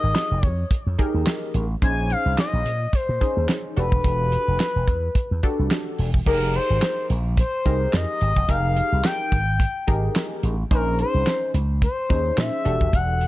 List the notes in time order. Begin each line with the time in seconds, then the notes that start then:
Already playing: D#4 G4 G#4 A#4 D#5
0.03 G#1
0.15 snare, clap, closed hi-hat
0.31 F1
0.43 F2 C#5, kick, closed hi-hat
0.71 muted slap bass stroke, kick, closed hi-hat
0.87 F2
0.98 D#4 G4 G#4 A#4, kick, closed hi-hat
1.14 D#2
1.27 snare, clap, closed hi-hat
1.54 A1, closed hi-hat
1.82 A#1 C#4 D#4 G#4 C5 G#5, kick, closed hi-hat
2.10 F5, closed hi-hat
2.26 C2
2.38 D#5, snare, clap, closed hi-hat
2.53 A#1
2.66 A#2, closed hi-hat
2.93 C5, muted slap bass stroke, kick, closed hi-hat
3.09 A#2
3.21 C#4 D#4 G#4 C5, kick, closed hi-hat
3.37 D#2
3.49 snare, clap, closed hi-hat
3.77 E1 D4 F#4 G4 A4 B4, closed hi-hat
3.92 kick
4.04 E1, kick, closed hi-hat
4.32 closed hi-hat
4.48 F1
4.60 snare, clap, closed hi-hat
4.76 E1
4.87 E2, kick, closed hi-hat
5.15 muted slap bass stroke, kick, closed hi-hat
5.31 E2
5.43 D4 F#4 G4 A4, kick, closed hi-hat
5.59 C2
5.71 snare, clap, closed hi-hat
5.99 E1, open hi-hat
6.14 kick
6.26 F1 D#4 G4 G#4 A#4, kick, crash
6.54 C5, closed hi-hat
6.70 G#1
6.82 snare, clap, closed hi-hat
7.10 A#1, closed hi-hat
7.37 C5, kick, closed hi-hat
7.65 C2 D#4 G4 G#4 A#4, kick, closed hi-hat
7.93 F2 D#5, snare, clap, closed hi-hat
8.21 G#1, closed hi-hat
8.36 E1, kick
8.48 F1 D#4 G4 G#4 A#4 F5, kick, closed hi-hat
8.77 closed hi-hat
8.92 C2
9.04 G5, snare, clap, closed hi-hat
9.32 G#1, kick, closed hi-hat
9.60 kick, closed hi-hat
9.87 G#1 D#4 G4 G#4 A#4, kick, closed hi-hat
10.16 snare, clap, closed hi-hat
10.43 A1, closed hi-hat
10.71 A#1 C#4 D#4 G#4 A#4 C5, kick, closed hi-hat
10.99 C5, closed hi-hat
11.14 C2
11.27 snare, clap, closed hi-hat
11.54 C#2, closed hi-hat
11.82 C5, kick, closed hi-hat
12.09 D#2 C#4 D#4 G#4 C5, kick, closed hi-hat
12.38 A#2 E5, snare, clap, closed hi-hat
12.65 E1 D4 F#4 G4 A4, closed hi-hat
12.81 D#1, kick
12.93 E1 F#5, kick, closed hi-hat
13.21 closed hi-hat